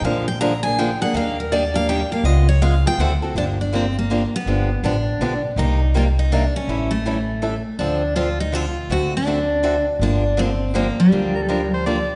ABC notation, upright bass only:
X:1
M:3/4
L:1/8
Q:"Swing" 1/4=162
K:Eb
V:1 name="Upright bass" clef=bass
B,,,6 | E,,6 | _D,,4 =D,,2 | [K:Gm] G,,,6 |
G,,,2 A,,,2 =B,,,2 | C,,6 | A,,,6 | D,,6 |
D,,6 | G,,,6 | D,,6 |]